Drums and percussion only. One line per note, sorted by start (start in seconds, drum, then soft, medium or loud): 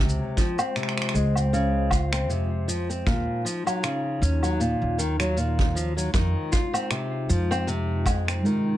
0.09 shaker soft
0.37 kick medium
0.37 shaker medium
0.59 low woodblock medium
0.59 shaker medium
0.76 finger snap soft
0.76 shaker soft
0.83 finger snap soft
0.89 finger snap soft
0.98 finger snap medium
1.02 finger snap medium
1.09 finger snap medium
1.15 shaker medium
1.35 low woodblock medium
1.35 shaker medium
1.54 shaker soft
1.91 kick medium
1.91 low woodblock medium
1.91 shaker medium
2.13 finger snap medium
2.13 shaker medium
2.30 shaker soft
2.69 shaker medium
2.90 shaker medium
3.07 kick loud
3.07 shaker soft
3.46 shaker medium
3.67 low woodblock medium
3.67 shaker medium
3.84 finger snap medium
3.84 shaker soft
4.23 shaker medium
4.43 low woodblock soft
4.43 shaker soft
4.61 shaker soft
4.99 shaker medium
5.20 finger snap medium
5.20 shaker medium
5.37 shaker medium
5.59 kick medium
5.77 shaker medium
5.98 shaker medium
6.14 kick loud
6.14 shaker medium
6.52 kick medium
6.52 shaker medium
6.74 low woodblock medium
6.74 shaker medium
6.91 finger snap medium
6.91 shaker soft
7.30 shaker medium
7.52 low woodblock medium
7.52 shaker medium
7.68 shaker soft
8.06 kick medium
8.06 low woodblock medium
8.06 shaker medium
8.28 finger snap medium
8.28 shaker soft
8.46 shaker soft